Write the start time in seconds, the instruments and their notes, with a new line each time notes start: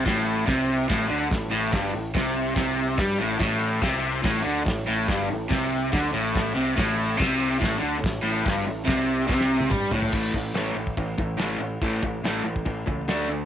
0.05 picked electric bass A1, overdriven electric guitar A2, kick, snare, open hi-hat
0.47 picked electric bass C2, overdriven electric guitar C3, kick, snare, open hi-hat
0.89 picked electric bass A1, overdriven electric guitar A2, kick, snare, open hi-hat
1.09 picked electric bass D2, overdriven electric guitar D3
1.30 picked electric bass A1, overdriven electric guitar A2, kick, snare, open hi-hat
1.51 picked electric bass A1, overdriven electric guitar A2
1.72 picked electric bass G1, overdriven electric guitar G2, kick, snare, open hi-hat
1.92 picked electric bass A1, overdriven electric guitar A2
2.15 picked electric bass C2, overdriven electric guitar C3, kick, snare, open hi-hat
2.56 picked electric bass C2, overdriven electric guitar C3, kick, snare, open hi-hat
2.98 picked electric bass G2, overdriven electric guitar G3, kick, snare, open hi-hat
3.18 picked electric bass A1, overdriven electric guitar A2
3.39 picked electric bass A1, overdriven electric guitar A2, kick, snare, crash
3.81 picked electric bass C2, overdriven electric guitar C3, kick, snare, open hi-hat
4.23 picked electric bass A1, overdriven electric guitar A2, kick, snare, open hi-hat
4.44 picked electric bass D2, overdriven electric guitar D3
4.65 picked electric bass A1, overdriven electric guitar A2, kick, snare, open hi-hat
4.87 picked electric bass A1, overdriven electric guitar A2
5.08 picked electric bass G1, overdriven electric guitar G2, kick, snare, open hi-hat
5.29 picked electric bass A1, overdriven electric guitar A2
5.49 picked electric bass C2, overdriven electric guitar C3, kick, snare, open hi-hat
5.92 picked electric bass D2, overdriven electric guitar D3, kick, snare, open hi-hat
6.13 picked electric bass A1, overdriven electric guitar A2
6.36 kick, snare, open hi-hat
6.55 picked electric bass C2, overdriven electric guitar C3
6.76 picked electric bass A1, overdriven electric guitar A2, kick, snare, open hi-hat
7.17 picked electric bass C2, overdriven electric guitar C3, kick, open hi-hat
7.22 snare
7.60 picked electric bass A1, overdriven electric guitar A2, kick, open hi-hat
7.64 snare
7.79 picked electric bass D2, overdriven electric guitar D3
8.00 picked electric bass A1, overdriven electric guitar A2, kick
8.05 snare, open hi-hat
8.22 picked electric bass A1, overdriven electric guitar A2
8.45 picked electric bass G1, overdriven electric guitar G2, kick, snare, open hi-hat
8.65 picked electric bass A1, overdriven electric guitar A2
8.85 picked electric bass C2, overdriven electric guitar C3, kick, snare, open hi-hat
9.28 picked electric bass C2, overdriven electric guitar C3, kick, snare
9.41 snare
9.60 high tom
9.69 picked electric bass G2, overdriven electric guitar G3, kick, mid tom
9.91 picked electric bass A1, overdriven electric guitar A2, floor tom
10.02 floor tom
10.12 picked electric bass A1, overdriven electric guitar A2 E3 A3, kick, crash
10.33 picked electric bass A1, overdriven electric guitar A2 E3, kick
10.54 picked electric bass A1, overdriven electric guitar A2 E3 A3, snare, crash
10.75 picked electric bass A1, overdriven electric guitar A2 E3
10.87 kick
10.97 picked electric bass A1, overdriven electric guitar A2 E3, kick, crash
11.18 picked electric bass A1, overdriven electric guitar A2 E3, kick
11.37 picked electric bass A1, overdriven electric guitar A2 E3 A3, snare, crash
11.59 picked electric bass A1, overdriven electric guitar A2 E3
11.81 picked electric bass A1, overdriven electric guitar A2 E3 A3, kick, crash
12.03 picked electric bass A1, overdriven electric guitar A2 E3, kick
12.22 picked electric bass A1, overdriven electric guitar A2 E3 A3, snare, crash
12.44 picked electric bass A1, overdriven electric guitar A2 E3
12.56 kick
12.65 picked electric bass A1, overdriven electric guitar A2 E3, kick, crash
12.86 picked electric bass C#2, overdriven electric guitar A2 E3, kick
13.06 picked electric bass D2, overdriven electric guitar D3 A3 D4, snare, crash
13.29 overdriven electric guitar D3 A3